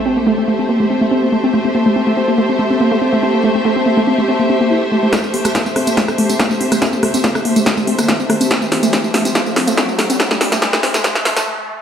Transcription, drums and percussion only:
5.13 kick loud
5.13 cross-stick medium
5.13 snare soft
5.13 closed hi-hat medium
5.13 tambourine soft
5.24 tambourine soft
5.34 open hi-hat loud
5.45 cross-stick medium
5.45 closed hi-hat medium
5.45 tambourine medium
5.55 kick loud
5.55 snare soft
5.55 closed hi-hat medium
5.55 tambourine soft
5.66 tambourine soft
5.76 cross-stick medium
5.76 open hi-hat loud
5.87 closed hi-hat medium
5.87 tambourine medium
5.97 kick loud
5.97 snare soft
5.97 closed hi-hat medium
5.97 tambourine medium
6.08 cross-stick medium
6.08 tambourine soft
6.18 open hi-hat loud
6.29 closed hi-hat medium
6.29 tambourine medium
6.39 kick loud
6.39 cross-stick medium
6.39 snare medium
6.39 closed hi-hat medium
6.39 tambourine medium
6.51 tambourine soft
6.61 open hi-hat loud
6.72 cross-stick medium
6.72 closed hi-hat medium
6.72 tambourine medium
6.82 kick loud
6.82 snare medium
6.82 closed hi-hat medium
6.82 tambourine medium
6.93 tambourine soft
7.03 cross-stick medium
7.03 open hi-hat loud
7.14 closed hi-hat medium
7.14 tambourine medium
7.24 kick loud
7.24 snare medium
7.24 closed hi-hat medium
7.24 tambourine soft
7.35 cross-stick medium
7.35 tambourine soft
7.45 open hi-hat loud
7.56 closed hi-hat medium
7.56 tambourine medium
7.66 kick loud
7.66 cross-stick medium
7.66 snare medium
7.66 closed hi-hat medium
7.66 tambourine soft
7.77 tambourine soft
7.87 open hi-hat loud
7.99 cross-stick medium
7.99 closed hi-hat medium
7.99 tambourine medium
8.08 kick loud
8.08 snare medium
8.08 closed hi-hat medium
8.20 tambourine soft
8.30 cross-stick medium
8.30 open hi-hat loud
8.41 closed hi-hat medium
8.41 tambourine medium
8.51 kick loud
8.51 snare medium
8.51 closed hi-hat medium
8.51 tambourine soft
8.62 tambourine soft
8.72 snare medium
8.72 open hi-hat loud
8.83 closed hi-hat medium
8.83 tambourine medium
8.93 kick loud
8.93 snare medium
8.93 closed hi-hat medium
8.93 tambourine medium
9.04 tambourine soft
9.14 snare medium
9.14 open hi-hat loud
9.25 closed hi-hat medium
9.25 tambourine medium
9.35 kick loud
9.35 snare medium
9.35 closed hi-hat medium
9.35 tambourine soft
9.46 tambourine soft
9.56 snare medium
9.56 open hi-hat loud
9.68 closed hi-hat medium
9.68 tambourine medium
9.77 kick loud
9.77 snare medium
9.77 closed hi-hat medium
9.77 tambourine medium
9.89 tambourine soft
9.99 snare medium
9.99 open hi-hat loud
10.10 closed hi-hat medium
10.10 tambourine medium
10.20 kick loud
10.20 snare medium
10.20 closed hi-hat medium
10.20 tambourine medium
10.31 snare medium
10.31 tambourine soft
10.41 snare medium
10.41 open hi-hat loud
10.52 snare medium
10.52 closed hi-hat medium
10.52 tambourine medium
10.62 kick loud
10.62 snare loud
10.62 closed hi-hat medium
10.62 tambourine soft
10.73 snare medium
10.73 tambourine soft
10.83 snare medium
10.83 open hi-hat loud
10.94 snare medium
10.94 closed hi-hat medium
10.94 tambourine medium
11.04 kick loud
11.04 snare loud
11.04 closed hi-hat medium
11.04 tambourine medium
11.15 snare medium
11.15 tambourine soft
11.25 snare loud
11.25 open hi-hat loud
11.37 snare medium
11.37 closed hi-hat medium
11.37 tambourine medium

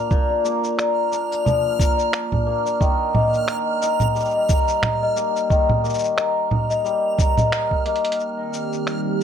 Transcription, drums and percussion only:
0.11 kick loud
0.11 shaker soft
0.45 shaker medium
0.64 shaker soft
0.79 finger snap medium
0.79 shaker soft
1.12 shaker medium
1.32 shaker soft
1.46 low conga medium
1.46 shaker soft
1.80 kick medium
1.80 shaker medium
1.99 shaker soft
2.13 finger snap medium
2.13 shaker soft
2.32 kick medium
2.32 low conga medium
2.66 shaker soft
2.81 kick loud
2.81 shaker soft
3.15 low conga medium
3.34 shaker soft
3.48 finger snap medium
3.48 shaker soft
3.82 shaker medium
4.00 low conga medium
4.00 shaker soft
4.15 shaker soft
4.20 shaker soft
4.25 shaker soft
4.30 shaker soft
4.49 kick medium
4.49 shaker medium
4.68 shaker soft
4.83 finger snap medium
4.83 low conga medium
4.83 shaker soft
5.17 shaker medium
5.36 shaker soft
5.50 kick loud
5.50 shaker soft
5.69 low conga medium
5.85 shaker soft
5.89 shaker soft
5.94 shaker soft
5.99 shaker medium
6.04 shaker soft
6.18 finger snap medium
6.18 shaker soft
6.51 low conga medium
6.70 shaker soft
6.85 shaker soft
7.19 kick medium
7.19 shaker medium
7.38 low conga medium
7.38 shaker soft
7.52 finger snap medium
7.52 shaker soft
7.71 kick medium
7.86 closed hi-hat soft
7.96 closed hi-hat medium
8.05 closed hi-hat medium
8.12 closed hi-hat medium
8.20 shaker soft
8.53 shaker medium
8.73 shaker soft
8.87 finger snap medium
8.87 shaker soft

